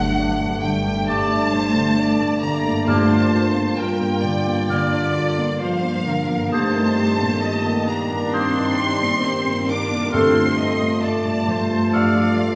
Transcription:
Already playing: timpani G2, felt piano G2 D3 A3 D4, harp G2 D4, double bass section G2, cello section F#3, french horn section A3 D4, violin section F#5
0.19 felt piano D4
0.40 felt piano A3
0.61 felt piano D3, cello section G3, violin section G5
0.84 felt piano A3
1.06 felt piano G2, cello section A3, clarinet A3, viola section D5, oboe D5, violin section A5, flute A6
1.30 felt piano D4
1.53 felt piano A3, viola section C5
1.76 felt piano D3
1.98 felt piano D4, viola section D5
2.21 felt piano A3
2.42 felt piano D3, cello section A#3, viola section D5, violin section A#5
2.66 felt piano A3
2.70 harp G2
2.75 harp G3
2.80 harp D4
2.84 felt piano G2, timpani G2, french horn section A#2 F4, cello section A3, harp F4, violin section A5, flute F6
2.88 double bass section G2, clarinet A#3, viola section C5, oboe D5
3.10 felt piano D4
3.33 felt piano F4
3.55 felt piano A#3
3.78 cello section G3, felt piano F4, viola section A#4, violin section G5
4.01 felt piano A#3
4.24 felt piano D3, viola section D5
4.47 felt piano A#3
4.70 felt piano D3, cello section D3, clarinet A#3, oboe D5, violin section D5, flute F6
4.92 felt piano D4
5.15 felt piano F4
5.38 felt piano A#3
5.60 cello section F3, felt piano F4, viola section C5, violin section F5
5.83 felt piano A#3
6.06 felt piano D3, viola section A#4
6.30 felt piano A#3
6.34 harp G2
6.39 harp C4
6.43 harp D#3
6.48 french horn section D#3, harp G4
6.52 double bass section G2, felt piano G2, french horn section A#2, cello section A3, clarinet A#3, viola section C5, oboe C5, violin section A5, flute D#6
6.75 felt piano D#4
6.98 felt piano G4
7.20 felt piano A#2
7.42 felt piano G4, viola section D#5
7.65 felt piano A#3
7.88 felt piano G3, cello section A#3, viola section D4, violin section A#5
8.11 felt piano A#3
8.33 felt piano G3, clarinet A#3, cello section C4, oboe C5, violin section C6, flute D#6
8.57 felt piano D#4
8.79 felt piano G4
9.02 felt piano A#3
9.24 felt piano G4, viola section C5
9.47 felt piano A#3
9.69 felt piano G3, cello section D4, viola section A#4, violin section D6
9.91 felt piano A#3
9.96 harp G2
10.00 harp A3
10.05 harp F4
10.10 felt piano G2, harp A4, oboe A4, viola section C5, violin section C6, flute F6
10.14 double bass section G2, timpani G2, french horn section A3 F4, clarinet A3, cello section C4, violin section C6
10.36 felt piano F4
10.58 felt piano A4, viola section D#5
10.81 felt piano A3
11.03 cello section A3, felt piano A4, viola section D5, violin section A5
11.25 felt piano A3
11.48 felt piano F3, viola section C5
11.71 felt piano A3
11.93 felt piano G2, cello section F3, clarinet A3, oboe A4, viola section D5, violin section F5, flute F6
12.16 felt piano F4
12.39 felt piano A4

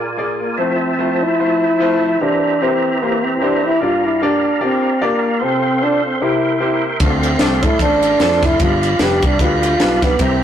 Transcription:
Already playing: grand piano A#2, tonewheel organ F4 A#4 D5 G#5
0.17 grand piano A#3 F4 G#4 D5
0.41 french horn A#3
0.57 tonewheel organ F3 C5 E5 A5, grand piano A3 C4 E4 F4 C5, french horn C4
0.98 grand piano A3 C4 E4 F4 C5
1.23 french horn E4
1.39 grand piano A3 C4 E4 F4 C5
1.80 grand piano A3 C4 E4 F4 C5
2.20 tonewheel organ E3 G4 A#5, grand piano E3 A#3 C4 E4 G4 C5, french horn D4
2.62 grand piano A#3 C4 E4 G4 C5, french horn C4
3.02 grand piano A#3 C4 E4 G4 C5, french horn A#3
3.25 french horn C4
3.42 grand piano A#3 C4 E4 G4 C5, french horn D4
3.66 french horn E4
3.79 grand piano G2 A#3 D4 F4 G4 D5, tonewheel organ D5 F5
3.84 french horn F4
4.06 french horn E4
4.22 grand piano A#3 D4 F4 G4 D5, french horn D4
4.61 grand piano A#3 D4 F4 G4 D5, french horn C4
5.01 grand piano A#3 D4 F4 G4 D5, french horn A#3
5.40 grand piano C3 C4 F4 A4, tonewheel organ C4 A4 C5 C6, french horn C4
5.82 grand piano C4 F4 C5, french horn D4
6.06 french horn C4
6.21 grand piano C3 A#3 C4 E4 G4 C5, french horn E4, tonewheel organ A#4 E5 G5
6.60 grand piano A#3 C4 E4 G4 C5, french horn E4
7.00 fingered electric bass D2, grand piano D3 A3 C4 D4 F4 C5, french horn C4, tonewheel organ A4 D5 F5 C6, kick, ride bell
7.23 ride bell
7.39 fingered electric bass C2, grand piano A3 C4 D4 F4 D5, snare, ride bell
7.63 fingered electric bass A2, french horn E4, kick, ride bell
7.79 fingered electric bass A1, grand piano A3 C4 D4 F4 A4, french horn D4, kick, ride bell
8.03 ride bell
8.19 fingered electric bass F2, grand piano A3 C4 D4 F4 A4, snare, ride bell
8.32 snare
8.42 fingered electric bass F1, french horn E4, kick, snare, ride bell
8.60 fingered electric bass G1, grand piano G2 G3 B3 D4 F4 B4, french horn F4, tonewheel organ G4 B5, kick, ride bell
8.83 ride bell
8.99 fingered electric bass F1, grand piano G3 B3 D4 F4 B4, french horn G4, snare, ride bell
9.22 fingered electric bass C2, french horn D4, kick, ride bell
9.39 fingered electric bass D2, grand piano G3 B3 D4 F4 B4, french horn F4, kick, ride bell
9.63 ride bell
9.80 fingered electric bass B1, grand piano G3 B3 D4 F4 B4, snare, ride bell
10.02 french horn B3, kick, snare, ride bell
10.19 fingered electric bass C2, grand piano C3 A#3 C4 E4 G4 C5, french horn C4, tonewheel organ C5 E5 A#5, kick, ride bell

